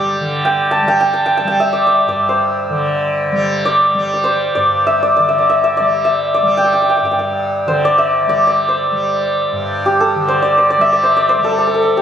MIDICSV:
0, 0, Header, 1, 3, 480
1, 0, Start_track
1, 0, Tempo, 500000
1, 11538, End_track
2, 0, Start_track
2, 0, Title_t, "Santur"
2, 0, Program_c, 0, 15
2, 0, Note_on_c, 0, 67, 55
2, 0, Note_on_c, 0, 79, 84
2, 428, Note_off_c, 0, 79, 0
2, 432, Note_on_c, 0, 79, 75
2, 683, Note_on_c, 0, 81, 83
2, 841, Note_off_c, 0, 79, 0
2, 845, Note_on_c, 0, 79, 81
2, 962, Note_off_c, 0, 79, 0
2, 966, Note_on_c, 0, 79, 73
2, 1087, Note_off_c, 0, 81, 0
2, 1091, Note_on_c, 0, 81, 74
2, 1205, Note_off_c, 0, 79, 0
2, 1208, Note_on_c, 0, 79, 76
2, 1314, Note_off_c, 0, 81, 0
2, 1318, Note_on_c, 0, 81, 83
2, 1414, Note_off_c, 0, 79, 0
2, 1418, Note_on_c, 0, 79, 74
2, 1537, Note_on_c, 0, 76, 73
2, 1659, Note_on_c, 0, 74, 65
2, 1791, Note_off_c, 0, 76, 0
2, 1795, Note_on_c, 0, 76, 64
2, 1998, Note_off_c, 0, 74, 0
2, 2002, Note_on_c, 0, 74, 69
2, 2198, Note_on_c, 0, 72, 67
2, 2656, Note_off_c, 0, 67, 0
2, 3170, Note_off_c, 0, 81, 0
2, 3406, Note_off_c, 0, 79, 0
2, 3504, Note_off_c, 0, 74, 0
2, 3508, Note_on_c, 0, 74, 69
2, 3968, Note_off_c, 0, 74, 0
2, 3972, Note_on_c, 0, 74, 51
2, 4012, Note_off_c, 0, 76, 0
2, 4065, Note_off_c, 0, 72, 0
2, 4069, Note_on_c, 0, 72, 63
2, 4366, Note_off_c, 0, 74, 0
2, 4370, Note_on_c, 0, 74, 69
2, 4672, Note_on_c, 0, 76, 77
2, 4822, Note_off_c, 0, 74, 0
2, 4826, Note_on_c, 0, 74, 74
2, 4955, Note_off_c, 0, 74, 0
2, 4959, Note_on_c, 0, 74, 69
2, 5071, Note_off_c, 0, 76, 0
2, 5075, Note_on_c, 0, 76, 71
2, 5166, Note_off_c, 0, 74, 0
2, 5169, Note_on_c, 0, 74, 62
2, 5272, Note_off_c, 0, 76, 0
2, 5275, Note_on_c, 0, 76, 78
2, 5409, Note_off_c, 0, 76, 0
2, 5413, Note_on_c, 0, 76, 78
2, 5535, Note_off_c, 0, 74, 0
2, 5539, Note_on_c, 0, 74, 77
2, 5803, Note_off_c, 0, 76, 0
2, 5807, Note_on_c, 0, 76, 77
2, 6087, Note_off_c, 0, 74, 0
2, 6090, Note_on_c, 0, 74, 71
2, 6310, Note_on_c, 0, 79, 81
2, 6375, Note_off_c, 0, 79, 0
2, 6379, Note_on_c, 0, 79, 58
2, 6457, Note_off_c, 0, 79, 0
2, 6461, Note_on_c, 0, 79, 60
2, 6544, Note_off_c, 0, 79, 0
2, 6548, Note_on_c, 0, 79, 46
2, 6604, Note_off_c, 0, 72, 0
2, 6617, Note_off_c, 0, 79, 0
2, 6621, Note_on_c, 0, 79, 56
2, 6686, Note_off_c, 0, 79, 0
2, 6690, Note_on_c, 0, 79, 48
2, 6764, Note_off_c, 0, 79, 0
2, 6768, Note_on_c, 0, 79, 53
2, 6825, Note_off_c, 0, 79, 0
2, 6829, Note_on_c, 0, 79, 45
2, 6898, Note_off_c, 0, 79, 0
2, 6902, Note_on_c, 0, 79, 56
2, 7372, Note_on_c, 0, 72, 71
2, 7532, Note_off_c, 0, 74, 0
2, 7535, Note_on_c, 0, 74, 81
2, 7660, Note_off_c, 0, 76, 0
2, 7664, Note_on_c, 0, 76, 79
2, 7957, Note_off_c, 0, 74, 0
2, 7961, Note_on_c, 0, 74, 78
2, 8129, Note_off_c, 0, 74, 0
2, 8133, Note_on_c, 0, 74, 86
2, 8334, Note_off_c, 0, 72, 0
2, 8338, Note_on_c, 0, 72, 68
2, 8889, Note_off_c, 0, 79, 0
2, 9463, Note_on_c, 0, 67, 71
2, 9605, Note_on_c, 0, 69, 73
2, 9869, Note_off_c, 0, 72, 0
2, 9873, Note_on_c, 0, 72, 79
2, 9882, Note_off_c, 0, 76, 0
2, 10003, Note_off_c, 0, 74, 0
2, 10007, Note_on_c, 0, 74, 77
2, 10150, Note_off_c, 0, 72, 0
2, 10154, Note_on_c, 0, 72, 70
2, 10271, Note_off_c, 0, 74, 0
2, 10275, Note_on_c, 0, 74, 85
2, 10379, Note_on_c, 0, 76, 89
2, 10488, Note_off_c, 0, 74, 0
2, 10491, Note_on_c, 0, 74, 84
2, 10588, Note_off_c, 0, 72, 0
2, 10592, Note_on_c, 0, 72, 80
2, 10716, Note_off_c, 0, 74, 0
2, 10720, Note_on_c, 0, 74, 86
2, 10834, Note_off_c, 0, 72, 0
2, 10838, Note_on_c, 0, 72, 84
2, 10982, Note_off_c, 0, 69, 0
2, 10986, Note_on_c, 0, 69, 80
2, 11053, Note_off_c, 0, 69, 0
2, 11057, Note_on_c, 0, 69, 60
2, 11119, Note_off_c, 0, 69, 0
2, 11123, Note_on_c, 0, 69, 69
2, 11201, Note_off_c, 0, 69, 0
2, 11205, Note_on_c, 0, 69, 59
2, 11268, Note_off_c, 0, 69, 0
2, 11272, Note_on_c, 0, 69, 66
2, 11348, Note_off_c, 0, 69, 0
2, 11352, Note_on_c, 0, 69, 62
2, 11489, Note_off_c, 0, 67, 0
2, 11493, Note_on_c, 0, 67, 67
2, 11538, Note_off_c, 0, 67, 0
2, 11538, Note_off_c, 0, 69, 0
2, 11538, Note_off_c, 0, 72, 0
2, 11538, Note_off_c, 0, 74, 0
2, 11538, Note_off_c, 0, 76, 0
2, 11538, End_track
3, 0, Start_track
3, 0, Title_t, "Tanpura"
3, 0, Program_c, 1, 104
3, 0, Note_on_c, 1, 43, 60
3, 0, Note_on_c, 1, 50, 59
3, 0, Note_on_c, 1, 55, 61
3, 195, Note_off_c, 1, 50, 0
3, 195, Note_on_c, 1, 50, 55
3, 788, Note_off_c, 1, 55, 0
3, 788, Note_on_c, 1, 55, 53
3, 1385, Note_off_c, 1, 55, 0
3, 1385, Note_on_c, 1, 55, 55
3, 1975, Note_off_c, 1, 43, 0
3, 1979, Note_on_c, 1, 43, 56
3, 2588, Note_off_c, 1, 50, 0
3, 2588, Note_on_c, 1, 50, 55
3, 3187, Note_off_c, 1, 55, 0
3, 3187, Note_on_c, 1, 55, 59
3, 3783, Note_off_c, 1, 55, 0
3, 3783, Note_on_c, 1, 55, 57
3, 4369, Note_off_c, 1, 43, 0
3, 4373, Note_on_c, 1, 43, 52
3, 4974, Note_off_c, 1, 50, 0
3, 4978, Note_on_c, 1, 50, 53
3, 5568, Note_off_c, 1, 55, 0
3, 5568, Note_on_c, 1, 55, 53
3, 6169, Note_off_c, 1, 55, 0
3, 6169, Note_on_c, 1, 55, 58
3, 6725, Note_off_c, 1, 43, 0
3, 6729, Note_on_c, 1, 43, 50
3, 7351, Note_off_c, 1, 50, 0
3, 7354, Note_on_c, 1, 50, 57
3, 7939, Note_off_c, 1, 55, 0
3, 7939, Note_on_c, 1, 55, 51
3, 8558, Note_off_c, 1, 55, 0
3, 8558, Note_on_c, 1, 55, 57
3, 9136, Note_off_c, 1, 43, 0
3, 9140, Note_on_c, 1, 43, 63
3, 9742, Note_off_c, 1, 50, 0
3, 9746, Note_on_c, 1, 50, 54
3, 10350, Note_off_c, 1, 55, 0
3, 10350, Note_on_c, 1, 55, 60
3, 10919, Note_off_c, 1, 55, 0
3, 10919, Note_on_c, 1, 55, 54
3, 11507, Note_off_c, 1, 43, 0
3, 11538, Note_off_c, 1, 50, 0
3, 11538, Note_off_c, 1, 55, 0
3, 11538, End_track
0, 0, End_of_file